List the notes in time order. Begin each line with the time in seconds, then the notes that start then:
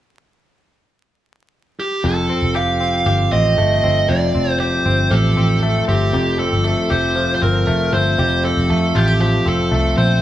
1.80 G4
2.04 F1 F2 A4
2.29 C4
2.42 F1
2.55 G4 F5
2.80 C4
3.06 G1 G4 F5
3.32 A1 C4 D#5
3.58 G1 A3
3.84 G1 C4
4.09 F1 F2 D5
4.35 F1 C4
4.60 G4 C5
4.86 G1 C4
5.11 A1 G4 A4
5.37 A1 C4
5.62 A3
5.88 G1 C4 G4
6.13 F1 F2 G4
6.39 C4 A4
6.53 G1
6.64 A3
6.90 F1 G4 C5
7.16 F3
7.35 C5
7.42 G1 C4 A#4
7.67 F1 A3
7.93 G1 C4 C5
8.18 F1 F2 G4
8.44 C4 A4
8.57 F1
8.70 F2 A3
8.95 A1 F4 G4
9.08 G4
9.20 F3 G4
9.46 F1 C4 A4
9.72 C2 A3
9.97 A#1 C4 C5